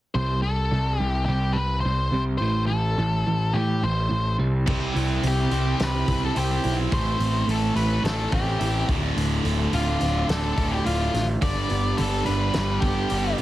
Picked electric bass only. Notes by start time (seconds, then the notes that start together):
0.15 C2
0.71 C2
1.00 C2
1.28 C2
1.85 C2
2.12 C2
2.40 A1
2.98 A1
3.26 A1
3.53 A2
3.83 A1
4.10 A1
4.39 C2
4.68 C2
4.95 C2
5.23 C2
5.51 C2
5.80 C2
6.08 C2
6.36 C2
6.65 B1
6.92 A1
7.19 A1
7.47 A1
7.75 A1
8.03 A1
8.33 A1
8.60 A1
8.88 D1
9.16 D1
9.44 D1
9.72 D1
10.01 D1
10.29 D1
10.57 D1
10.86 D1
11.14 A1
11.42 G1
11.71 G1
11.99 G1
12.28 G1
12.56 G1
12.82 G1
13.11 G1
13.39 B1